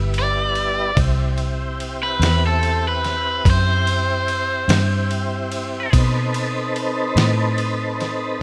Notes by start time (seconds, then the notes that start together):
Already playing: G1 G3 B3 E4
0.14 ride
0.19 D5
0.55 ride
0.95 C2 C4 E4 G4, kick, ride
1.38 ride
1.80 ride
2.03 B4
2.20 E2, snare, ride
2.47 A4
2.63 ride
2.88 B4
3.04 snare, ride
3.45 F#2, kick, ride
3.50 C5
3.87 ride
4.28 ride
4.68 G2, snare, ride
5.11 ride
5.52 ride
5.90 B2 C4 D#4 A4 B4, kick, ride
6.34 ride
6.76 ride
7.16 A2, snare, ride
7.58 ride
8.00 snare, ride